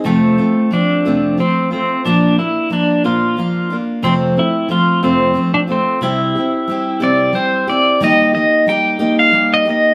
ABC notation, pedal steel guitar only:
X:1
M:6/8
L:1/16
Q:3/8=60
K:F
V:1 name="Pedal steel guitar"
A,4 D4 C2 C2 | D2 E2 D2 F4 z2 | C2 E2 F2 C3 D C2 | E6 d2 c2 d2 |
_e2 e2 g3 f2 e e2 |]